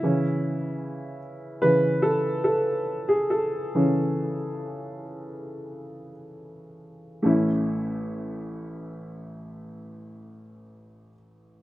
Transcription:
X:1
M:4/4
L:1/16
Q:1/4=62
K:A
V:1 name="Upright piano"
E6 z2 B2 A2 A3 G | A12 z4 | [A,CE]16 |]
V:2 name="Upright piano" clef=bass
[C,E,C]2 z6 [C,E,C]2 z6 | z2 [C,E,C]2 z12 | A,,,16 |]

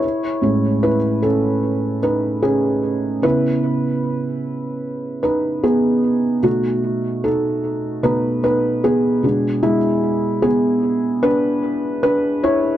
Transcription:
X:1
M:4/4
L:1/8
Q:1/4=75
K:C#m
V:1 name="Felt piano"
[Ec]2 [EB] [CA]2 [DB] [CG]2 | B4- B [DB] [B,G]2 | F2 [DA]2 B [DB] [B,G]2 | [G,E]2 [B,G]2 [=DB]2 [DB] [Ec] |]
V:2 name="Felt piano"
z [A,,G,C] z6 | [C,B,E]8 | [B,,A,D]4 [B,,A,D] z2 [B,,G,=D] | z8 |]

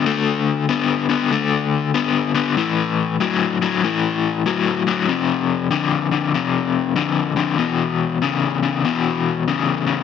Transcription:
X:1
M:4/4
L:1/8
Q:"Swing" 1/4=96
K:Am
V:1 name="Overdriven electric guitar" clef=bass
[D,A,]2 [D,B,] [D,B,] [D,A,]2 [D,B,] [D,B,] | [A,,E,]2 [A,,^F,] [A,,F,] [A,,E,]2 [A,,F,] [A,,F,] | [F,,C,]2 [F,,D,] [F,,D,] [F,,C,]2 [F,,D,] [F,,D,] | [E,,B,,]2 [E,,^C,] [E,,C,] [E,,B,,]2 [E,,C,] [E,,C,] |]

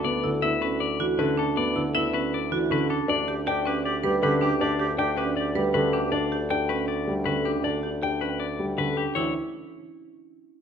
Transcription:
X:1
M:4/4
L:1/8
Q:1/4=158
K:Glyd
V:1 name="Clean electric guitar"
d z e B d z B A | d z e B d z B A | d z g B d z B G | d z g B d z B G |
d z g B d z B G | d z g B d z B G | c z6 z |]
V:2 name="Clarinet"
z8 | z8 | G G G G G G G G | G G G G G G G z |
z8 | z8 | z8 |]
V:3 name="Marimba"
z E E C z F C D | z E E C z F C D | z G G C z B C D | z G G C z B C D |
z G G C z2 C D | z G G C z2 C D | E z6 z |]
V:4 name="Grand piano" clef=bass
B, D, B, z2 E, D, z | B, D, B, z2 E, D, z | D z D z2 G, D, z | D z D z2 G, D, z |
D z D z2 G, D, z | D z D z2 G, D, z | E, z6 z |]
V:5 name="Bassoon" clef=bass
D,,8- | D,,8 | D,,8- | D,,8- |
D,,8- | D,,8 | D,, z6 z |]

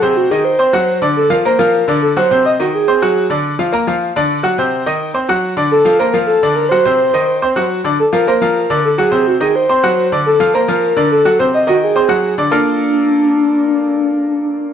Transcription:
X:1
M:4/4
L:1/8
Q:1/4=211
K:Bb
V:1 name="Soft synth lead"
_A _G A c4 z | A B c B3 A c- | c e _G _A4 z | z8 |
z8 | A2 c B A2 B c- | c6 z2 | A B c B3 A _A- |
_A _G A c4 z | A2 c B3 A2 | c e _G _A4 z | D8- |
D8 |]
V:2 name="Grand piano"
[C,Cc]2 [E,Ee]2 [Ccc'] [_G,_G_g]2 [D,Dd]- | [D,Dd] [F,Ff] [B,Bb] [F,Ff]2 [D,Dd]2 [_G,_G_g] | [C,Cc]2 [E,Ee]2 [Ccc'] [_G,_G_g]2 [D,Dd]- | [D,Dd] [F,Ff] [B,Bb] [F,Ff]2 [D,Dd]2 [_G,_G_g] |
[C,Cc]2 [E,Ee]2 [Ccc'] [_G,_G_g]2 [D,Dd]- | [D,Dd] [F,Ff] [B,Bb] [F,Ff]2 [D,Dd]2 [_G,_G_g] | [C,Cc]2 [E,Ee]2 [Ccc'] [_G,_G_g]2 [D,Dd] | z [F,Ff] [B,Bb] [F,Ff]2 [D,Dd]2 [_G,_G_g] |
[C,Cc]2 [E,Ee]2 [Ccc'] [_G,_G_g]2 [D,Dd]- | [D,Dd] [F,Ff] [B,Bb] [F,Ff]2 [D,Dd]2 [_G,_G_g] | [C,Cc]2 [E,Ee]2 [Ccc'] [_G,_G_g]2 [D,Dd] | [B,FABdf]8- |
[B,FABdf]8 |]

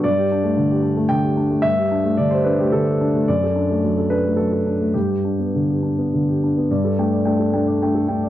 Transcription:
X:1
M:3/4
L:1/16
Q:1/4=109
K:G
V:1 name="Grand piano"
d8 g4 | e4 d c B G A4 | d6 B2 A4 | G8 z4 |
d A g d g A g d g A g d |]
V:2 name="Grand piano"
G,, G D A, D, G D A, D, G D A, | G,, G D A, D, G D A, D, G D A, | F,, A D A, F, A D A, F, A D A, | G,, G D B, D, G D B, D, G D B, |
G,,2 [A,D]2 [A,D]2 [A,D]2 [A,D]2 [A,D]2 |]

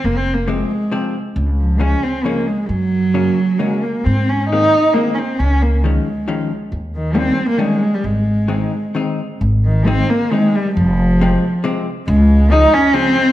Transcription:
X:1
M:3/4
L:1/16
Q:1/4=135
K:Ab
V:1 name="Cello"
(3B,2 C2 B,2 A,6 z2 | z2 F,2 D2 C2 B,2 A,2 | _G,8 A,2 B,2 | C2 D2 E4 B,3/2 D/2 C2 |
D2 B,2 A,6 z2 | z2 E,2 C3 B, A,3 G, | A,8 z4 | z2 E,2 C2 B,2 A,2 G,2 |
F,8 z4 | A,4 E2 D2 C4 |]
V:2 name="Hollow-body jazz guitar" clef=bass
z4 [C,F,A,C]2 z2 [C,F,A,C]2 z2 | z4 [D,F,A,D]2 z2 [D,F,A,D]2 z2 | z4 [D,_G,B,D]2 z2 [D,G,B,D]2 z2 | z4 [E,A,B,C]2 z2 [E,A,B,C]2 z2 |
z4 [E,F,A,D]2 z2 [E,F,A,D]2 z2 | z4 [E,G,B,D]2 z2 [E,G,B,D]2 z2 | z4 [E,A,CE]2 z2 [E,A,CE]2 z2 | z4 [E,A,CE]2 z2 [E,A,CE]2 z2 |
z4 [C,F,A,C]2 z2 [C,F,A,C]2 z2 | z4 [D,F,A,D]2 z2 [D,F,A,D]2 z2 |]
V:3 name="Upright bass" clef=bass
F,,,8 z4 | D,,8 z4 | _G,,8 z4 | A,,8 z4 |
D,,8 z4 | E,,8 z4 | A,,,8 z4 | A,,,8 z4 |
F,,,8 z4 | D,,8 z4 |]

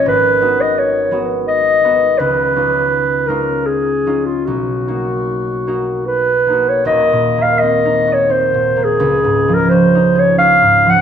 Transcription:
X:1
M:3/4
L:1/16
Q:1/4=84
K:Ebm
V:1 name="Clarinet"
c3 e d3 z e4 | c6 B2 A3 F | ^F8 =B3 d | e3 f e3 d =c3 A- |
A3 B =c3 d f3 g |]
V:2 name="Harp"
[A,,,A,]2 [A,CEG]4 [A,CEG]4 [A,CEG]2 | D,,2 [A,DEF]4 [A,DEF]4 [A,DEF]2 | =B,,,2 [^A,^D^F]4 [A,DF]4 [A,DF]2 | (3[E,,,E,,]2 B,,2 B,2 (3=C2 E2 G2 (3C2 B,,2 B,2 |
(3D,,2 A,,2 F,2 (3D2 E2 A2 (3D2 A,,2 F,2 |]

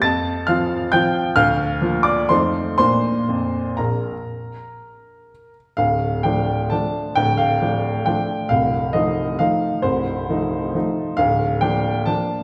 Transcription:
X:1
M:3/4
L:1/8
Q:1/4=133
K:Bb
V:1 name="Upright piano"
[aa']2 [ff']2 [gg']2 | [ff']3 [dd'] [cc']2 | [cc']4 [Bb]2- | [Bb]4- [Bb] z |
f2 g2 a2 | g f3 g2 | f2 e2 f2 | c6 |
f2 g2 a2 |]
V:2 name="Upright piano" clef=bass
F,,2 [F,CF]2 [F,CF]2 | D,,2 [F,B,F]2 [F,,F,A,E]2 | [B,,B,D]2 F,,2 B,,,2 | z6 |
[D,,,D,,]2 [F,A,D]2 [F,A,D]2 | [D,,,D,,]2 [F,A,D]2 [F,A,D]2 | [C,,,C,,]2 [F,A,E]2 [F,A,E]2 | [C,,,C,,]2 [F,A,E]2 [F,A,E]2 |
[D,,,D,,]2 [F,B,D]2 [F,B,D]2 |]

